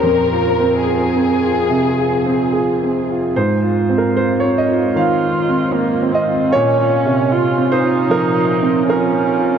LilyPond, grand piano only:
\new Staff \with { instrumentName = "Grand piano" } { \time 4/4 \key aes \major \tempo 4 = 76 << { r2. aes'4 | c''8. bes'16 c''16 des''16 ees''8 f''4. ees''8 | des''4. c''8 bes'4 bes'4 | } \\ { \tuplet 3/2 { f,8 f'8 c'8 f'8 c'8 f'8 c8 f'8 c'8 f'8 c'8 f'8 } | \tuplet 3/2 { aes,8 f'8 c'8 f'8 c'8 f'8 ees8 f'8 c'8 f'8 c'8 f'8 } | \tuplet 3/2 { bes,8 f'8 c8 f'8 c'8 f'8 f8 f'8 c'8 f'8 c'8 f'8 } | } >> }